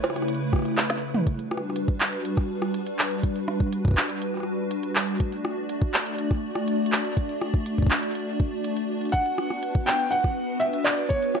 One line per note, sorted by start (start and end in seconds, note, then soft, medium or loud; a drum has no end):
0.00 1.23 C#3 medium
0.00 1.23 A3 medium
0.00 1.25 E4 medium
0.00 1.23 B4 medium
0.00 0.73 C#5 loud
0.00 cross-stick medium
0.00 cowbell medium
0.10 cross-stick medium
0.16 cross-stick medium
0.16 closed hi-hat medium
0.22 cross-stick soft
0.28 closed hi-hat medium
0.35 closed hi-hat soft
0.53 kick medium
0.53 cross-stick medium
0.56 cross-stick soft
0.59 cross-stick soft
0.62 cross-stick soft
0.65 cross-stick soft
0.65 closed hi-hat soft
0.65 cabasa medium
0.68 cross-stick soft
0.71 cross-stick soft
0.74 cross-stick soft
0.74 snare medium
0.74 clap loud
0.90 snare medium
0.90 closed hi-hat soft
0.90 cabasa medium
1.14 closed hi-hat soft
1.14 mid tom medium
1.27 5.16 G3 medium
1.27 11.40 D4 medium
1.27 11.40 F#4 medium
1.27 5.16 B4 medium
1.27 kick medium
1.27 closed hi-hat medium
1.39 closed hi-hat soft
1.51 cross-stick medium
1.57 cross-stick medium
1.70 cross-stick soft
1.76 closed hi-hat medium
1.88 kick loud
1.88 closed hi-hat soft
2.00 clap loud
2.13 closed hi-hat medium
2.25 closed hi-hat medium
2.37 kick loud
2.37 cross-stick medium
2.62 cross-stick medium
2.74 closed hi-hat medium
2.87 closed hi-hat medium
2.99 clap loud
3.11 closed hi-hat soft
3.23 kick medium
3.23 closed hi-hat medium
3.36 closed hi-hat soft
3.48 cross-stick medium
3.60 kick medium
3.73 closed hi-hat medium
3.85 kick loud
3.85 closed hi-hat soft
3.88 kick medium
3.91 kick medium
3.94 kick medium
3.94 clap loud
4.09 closed hi-hat soft
4.22 closed hi-hat medium
4.34 cross-stick soft
4.37 cross-stick soft
4.40 cross-stick soft
4.43 cross-stick soft
4.71 closed hi-hat medium
4.83 closed hi-hat medium
4.96 clap loud
5.08 closed hi-hat soft
5.20 9.10 A3 medium
5.20 9.10 D5 medium
5.20 kick medium
5.20 closed hi-hat medium
5.32 closed hi-hat soft
5.45 cross-stick medium
5.69 closed hi-hat medium
5.82 kick loud
5.82 closed hi-hat soft
5.94 clap loud
6.06 closed hi-hat soft
6.18 closed hi-hat medium
6.31 kick loud
6.31 cross-stick soft
6.55 cross-stick medium
6.68 closed hi-hat medium
6.86 closed hi-hat medium
6.92 clap loud
7.05 closed hi-hat soft
7.17 kick medium
7.17 closed hi-hat medium
7.29 closed hi-hat soft
7.41 cross-stick medium
7.54 kick medium
7.66 closed hi-hat medium
7.78 kick medium
7.78 closed hi-hat soft
7.82 kick medium
7.87 kick medium
7.91 clap loud
8.03 closed hi-hat soft
8.15 closed hi-hat medium
8.40 kick medium
8.64 closed hi-hat medium
8.77 closed hi-hat medium
9.01 closed hi-hat soft
9.05 closed hi-hat soft
9.09 9.83 F#5 loud
9.09 closed hi-hat soft
9.14 11.40 B3 medium
9.14 11.40 B4 medium
9.14 kick medium
9.14 closed hi-hat medium
9.18 closed hi-hat soft
9.22 closed hi-hat soft
9.26 closed hi-hat soft
9.38 cross-stick medium
9.50 cross-stick medium
9.63 closed hi-hat medium
9.75 kick loud
9.75 closed hi-hat soft
9.86 10.12 G5 loud
9.86 clap loud
10.00 closed hi-hat soft
10.11 10.62 F#5 loud
10.11 closed hi-hat medium
10.24 kick loud
10.24 cross-stick soft
10.60 10.86 E5 medium
10.60 closed hi-hat medium
10.73 closed hi-hat soft
10.84 11.10 D5 medium
10.84 clap loud
10.98 closed hi-hat soft
11.09 11.40 C#5 loud
11.09 kick medium
11.09 closed hi-hat medium
11.23 closed hi-hat soft
11.35 cross-stick medium